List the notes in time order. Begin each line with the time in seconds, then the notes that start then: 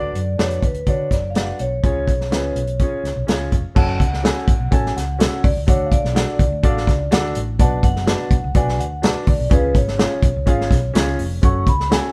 Already playing: D2 D3 D4 F#4 B4 D5
0.15 F#2, closed hi-hat
0.38 D4 F#4 B4 C#5 D5, snare, closed hi-hat
0.50 closed hi-hat
0.62 D2 B4, kick, closed hi-hat
0.74 closed hi-hat
0.87 D3 D4 F#4 B4 C#5 D5, kick, closed hi-hat
1.11 F#1 D5, kick, snare, closed hi-hat
1.30 F5
1.35 D4 F#4 B4 D5 F#5, snare, closed hi-hat
1.59 B1 C#5, closed hi-hat
1.83 C#2 C#3 C#4 F4 G#4 C#5, kick, closed hi-hat
2.08 B1, kick, closed hi-hat
2.21 snare
2.31 C#2 C#4 F4 G#4 B4, snare, closed hi-hat
2.56 B1, closed hi-hat
2.67 closed hi-hat
2.79 C#4 F4 G#4 C#5, kick, closed hi-hat
3.03 C#2, snare, closed hi-hat
3.16 B1
3.27 C#4 F4 G#4 C#5 F5, snare, closed hi-hat
3.52 F1, kick, closed hi-hat
3.75 F#1 C#4 F#4 A4 C#5 F#5 A5, kick, crash
4.00 C#2 F#5, kick, closed hi-hat
4.13 snare
4.23 C#4 F#4 A4 C#5 G#5, snare, closed hi-hat
4.48 A1, kick, closed hi-hat
4.60 B1
4.71 A1 C#4 F#4 A4 C#5 G#5 A5, kick, closed hi-hat
4.86 snare
4.96 C#2 F#5, snare, closed hi-hat
5.19 C#4 F#4 A4 C#5 F#5, snare, closed hi-hat
5.44 C#2 D5, kick, open hi-hat
5.57 C#2
5.67 D2 D3 D4 F#4 A4 C#5 D5 F#5, kick, closed hi-hat
5.86 F5
5.92 D5, kick, closed hi-hat
6.04 B1, snare
6.14 D4 F#4 A4 D5 F#5, snare, closed hi-hat
6.39 C#2, kick, closed hi-hat
6.52 D2
6.63 A1 D4 F#4 A4 D5 F5, kick, closed hi-hat
6.77 snare
6.87 C#2, kick, snare, closed hi-hat
7.11 D2 D4 F#4 A4 D5 F#5, snare, closed hi-hat
7.35 A1, closed hi-hat
7.59 B1 B2 D4 F#4 B4 D5 F#5 A5, kick, closed hi-hat
7.83 F#1 F#5, kick, closed hi-hat
7.96 snare
8.06 D4 F#4 B4 D5 A5, snare, closed hi-hat
8.31 B1, kick, closed hi-hat
8.44 C#2
8.55 B1 D4 F#4 B4 D5 F#5 G#5, kick, closed hi-hat
8.69 snare
8.80 D2 F#5, closed hi-hat
9.02 D4 F#4 B4 D5 A5, snare, closed hi-hat
9.27 D2 D5, kick, open hi-hat
9.40 B1
9.50 C#3 C#4 F4 G#4 B4 C#5 F5, kick, closed hi-hat
9.75 G#1 C#5, kick, closed hi-hat
9.88 snare
9.97 C#4 F4 G#4 C#5 F5, snare, closed hi-hat
10.23 B1, kick, closed hi-hat
10.36 C#2
10.46 G#1 C#4 F4 G#4 C#5 F5, kick, closed hi-hat
10.61 snare
10.71 B1, kick, snare, closed hi-hat
10.94 C#2 C#4 F4 G#4 C#5 F5, snare, closed hi-hat
11.19 F1, open hi-hat
11.42 F#1 C#4 F#4 A4 C#5 F#5 C#6, kick, closed hi-hat
11.67 C#2 B5, kick, closed hi-hat
11.80 snare
11.90 C#4 F#4 A4 C#5 F#5 G#5, snare, closed hi-hat